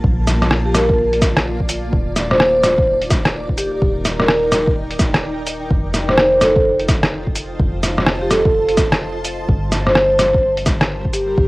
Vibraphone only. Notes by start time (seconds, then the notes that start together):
0.65 G4
0.75 A#4
2.30 C5
3.58 G4
3.72 G4
4.20 A#4
6.09 C5
6.42 A4
8.22 G4
8.30 A4
9.86 C5
11.13 G4
11.28 G4